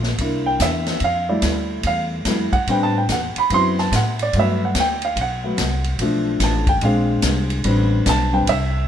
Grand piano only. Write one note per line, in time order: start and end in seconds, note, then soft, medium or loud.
0.21 0.99 A#3 medium
0.21 0.99 D4 soft
0.21 1.00 E4 medium
0.46 0.61 G5 medium
0.62 1.00 E5 medium
1.04 1.30 F5 medium
1.29 2.25 G3 soft
1.29 2.25 A3 soft
1.29 2.25 E4 medium
1.29 1.81 D5 medium
1.87 2.03 F5 medium
2.27 2.51 G3 soft
2.27 2.51 A3 soft
2.27 2.51 E4 medium
2.53 2.67 F#5 medium
2.68 2.99 G3 medium
2.68 2.99 B3 soft
2.68 3.00 C4 medium
2.68 3.00 D4 medium
2.68 2.83 G5 medium
2.83 2.96 A5 medium
2.98 3.10 G5 medium
3.12 3.37 F#5 medium
3.38 3.52 B5 medium
3.51 3.82 F#3 medium
3.51 3.83 B3 soft
3.51 3.82 C4 soft
3.51 3.83 E4 medium
3.51 3.79 C6 loud
3.79 3.93 A5 medium
3.96 4.20 F#5 medium
4.23 4.35 D5 medium
4.36 4.66 F#3 medium
4.36 4.66 A3 soft
4.36 4.67 B3 medium
4.36 4.63 E5 medium
4.65 4.77 F#5 medium
4.80 5.04 G5 medium
5.05 5.18 F5 medium
5.21 5.98 F#5 medium
5.44 5.57 F#3 soft
5.44 5.57 A3 soft
5.44 5.57 B3 soft
6.01 6.65 F3 soft
6.01 6.65 A3 soft
6.01 6.66 D4 medium
6.44 6.68 A5 medium
6.69 6.82 G5 medium
6.83 7.61 G#3 medium
6.83 7.62 C4 medium
6.83 7.62 D4 medium
6.83 7.48 F5 medium
7.64 8.29 G3 medium
7.64 8.30 B3 soft
7.64 8.30 C4 soft
7.64 8.30 D4 medium
8.09 8.34 A5 medium
8.32 8.46 G3 soft
8.32 8.46 B3 soft
8.32 8.46 C4 soft
8.32 8.46 D4 soft
8.32 8.48 G5 medium
8.49 8.88 E5 medium